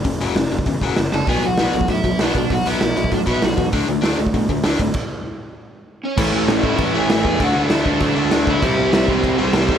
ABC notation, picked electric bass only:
X:1
M:4/4
L:1/8
Q:1/4=196
K:Dlyd
V:1 name="Picked electric bass" clef=bass
F,,, F,,, F,,, F,,, E,, F,,, F,,, F,,, | B,,, B,,, B,,, B,,, A,, B,,, B,,, B,,, | B,,, B,,, B,,, B,,, A,, B,,, B,,, E,, | D,, D,, D,, D,, B,, D,, D,, G,,, |
z8 | A,,, A,,, A,,, A,,, A,,, A,,, A,,, E,, | D,, D,, D,, D,, D,, D,, D,, D,, | =C,, C,, C,, C,, C,, C,, C,, E,, |]